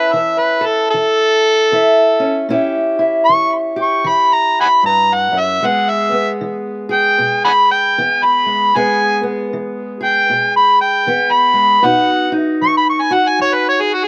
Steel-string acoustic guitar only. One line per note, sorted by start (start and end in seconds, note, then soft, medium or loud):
0.00 2.19 C#4 medium
0.00 1.73 E4 medium
0.00 0.60 A4 medium
0.13 0.86 E3 medium
0.61 2.45 A4 medium
0.94 1.65 E3 medium
1.72 2.44 E3 medium
1.72 2.50 E4 medium
2.20 2.46 C#4 medium
2.49 3.21 A#2 medium
2.49 5.59 C#4 medium
2.49 2.99 E4 medium
2.49 3.75 G4 medium
2.99 5.64 E4 medium
3.29 4.00 E3 medium
3.76 5.59 G4 medium
4.04 4.77 E3 medium
4.83 5.31 G2 medium
5.32 5.62 F#2 medium
5.62 6.34 E2 medium
5.62 8.44 G#3 medium
5.62 6.11 B3 medium
5.62 6.89 G#4 medium
6.12 7.98 B3 medium
6.41 7.12 E3 medium
6.89 8.71 G#4 medium
7.19 7.90 B2 medium
7.98 8.69 E3 medium
7.98 8.76 B3 medium
8.46 8.75 G#3 medium
8.75 9.46 E2 medium
8.75 11.52 G#3 medium
8.75 9.23 B3 medium
8.75 9.99 G#4 medium
9.23 11.07 B3 medium
9.53 10.24 E3 medium
10.01 11.82 G#4 medium
10.30 11.01 B2 medium
11.07 11.79 E3 medium
11.07 11.83 B3 medium
11.54 11.83 G#3 medium
11.83 12.56 B2 medium
11.83 14.08 B3 medium
11.83 12.32 D#4 medium
11.83 13.10 F#4 medium
12.32 14.08 D#4 medium
12.62 13.34 F#3 medium
13.11 14.08 F#4 medium
13.39 14.08 F#2 medium